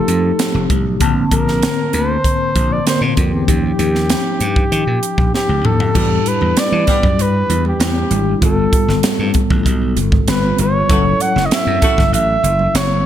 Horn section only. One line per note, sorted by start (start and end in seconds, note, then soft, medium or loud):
5.95 6.08 G3 medium
5.95 6.08 B3 medium
5.95 6.08 D4 medium
5.95 6.08 G4 medium
6.86 7.07 G3 medium
6.86 7.07 B3 medium
6.86 7.07 D4 medium
6.86 7.07 G4 medium
10.90 11.03 A3 medium
10.90 11.03 E4 medium
10.90 11.03 F#4 medium
10.90 11.03 A4 medium
11.82 12.02 A3 medium
11.82 12.02 E4 medium
11.82 12.02 F#4 medium
11.82 12.02 A4 medium